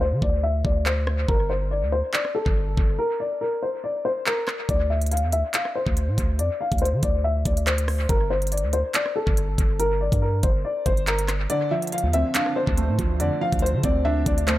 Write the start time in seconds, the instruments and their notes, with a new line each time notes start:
Already playing: 808-style bass D2, downlifter
0.01 grand piano C5
0.12 808-style bass D3
0.22 808-style bass D2, grand piano D5, kick
0.43 grand piano E5
0.65 808-style bass D2, grand piano D5, kick
0.86 grand piano C5, clap
1.07 cross-stick
1.28 808-style bass G1, grand piano A#4, kick
1.50 grand piano C5
1.71 grand piano D5
1.82 808-style bass D2
1.92 grand piano C5
2.13 grand piano D5, clap
2.25 cross-stick
2.35 grand piano A4
2.46 808-style bass G1, kick
2.77 808-style bass G1, kick
2.99 grand piano A#4
3.20 grand piano D5
3.41 grand piano A#4
3.63 grand piano C5
3.84 grand piano D5
4.05 grand piano C5
4.26 grand piano A#4, clap
4.48 cross-stick, clap
4.69 808-style bass D2, grand piano D5, kick, closed hi-hat
4.90 grand piano E5
5.01 closed hi-hat
5.06 closed hi-hat
5.11 grand piano F5, closed hi-hat
5.17 closed hi-hat
5.23 808-style bass E2
5.32 808-style bass D2, grand piano E5, closed hi-hat
5.54 grand piano F5, clap, closed hi-hat
5.65 cross-stick
5.75 grand piano C5
5.87 808-style bass D2, kick
5.97 closed hi-hat
6.08 808-style bass A2
6.18 808-style bass D2, kick, closed hi-hat
6.39 808-style bass F2, grand piano D5, closed hi-hat
6.61 grand piano F5
6.72 808-style bass D2, kick, closed hi-hat
6.78 grand piano C5, closed hi-hat
6.85 closed hi-hat
6.93 808-style bass D3
7.03 808-style bass D2, grand piano D5, kick, closed hi-hat
7.24 grand piano E5
7.45 808-style bass D2, grand piano D5, kick, closed hi-hat
7.57 closed hi-hat
7.67 grand piano C5, clap, closed hi-hat
7.78 closed hi-hat
7.88 cross-stick, open hi-hat
8.09 808-style bass G1, grand piano A#4, kick, closed hi-hat
8.30 grand piano C5
8.42 closed hi-hat
8.47 closed hi-hat
8.52 grand piano D5, closed hi-hat
8.58 closed hi-hat
8.63 808-style bass D2
8.73 grand piano C5, closed hi-hat
8.94 grand piano D5, clap, closed hi-hat
9.06 cross-stick
9.16 grand piano A4
9.27 808-style bass G1, kick
9.37 closed hi-hat
9.58 808-style bass G1, kick, closed hi-hat
9.79 grand piano A#4, closed hi-hat
10.01 grand piano D5
10.12 808-style bass G2, kick, closed hi-hat
10.22 grand piano A#4
10.43 808-style bass G1, grand piano C5, kick, closed hi-hat
10.65 grand piano D5
10.86 808-style bass G1, grand piano C5, kick, closed hi-hat
10.97 closed hi-hat
11.07 grand piano A#4, clap, closed hi-hat
11.19 closed hi-hat
11.28 cross-stick, clap, closed hi-hat
11.50 felt piano D3, grand piano D5, closed hi-hat
11.71 felt piano F3, grand piano E5
11.82 closed hi-hat
11.87 closed hi-hat
11.92 grand piano F5, closed hi-hat
11.98 closed hi-hat
12.04 808-style bass E2
12.13 808-style bass D2, felt piano C4, grand piano E5, closed hi-hat
12.35 felt piano D4, grand piano F5, clap, closed hi-hat
12.46 cross-stick
12.56 grand piano C5
12.67 808-style bass D2, kick
12.78 felt piano A3, closed hi-hat
12.89 808-style bass A2
12.99 808-style bass D2, felt piano F3, kick, closed hi-hat
13.20 808-style bass F2, felt piano D3, grand piano D5, closed hi-hat
13.41 felt piano F3, grand piano F5
13.52 808-style bass D2, kick, closed hi-hat
13.59 grand piano C5, closed hi-hat
13.66 closed hi-hat
13.74 808-style bass D3
13.83 808-style bass D2, felt piano C4, grand piano D5, kick, closed hi-hat
14.05 felt piano D4, grand piano E5
14.26 808-style bass D2, grand piano D5, kick, closed hi-hat
14.38 closed hi-hat
14.47 felt piano A3, grand piano C5, clap, closed hi-hat